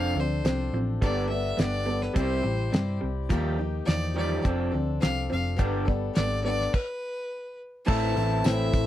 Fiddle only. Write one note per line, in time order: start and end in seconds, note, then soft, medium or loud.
0.00 0.22 F5 loud
0.20 0.75 C5 medium
1.04 1.29 D5 medium
1.29 1.61 E5 medium
1.59 2.04 D5 loud
2.02 2.16 B4 medium
2.16 2.98 C5 medium
3.86 4.13 D5 loud
4.18 4.43 D5 medium
5.01 5.28 F5 loud
5.32 5.58 F5 medium
6.16 6.42 D5 loud
6.44 6.75 D5 loud
6.74 7.59 B4 medium
7.85 8.47 A5 loud
8.46 8.87 E5 loud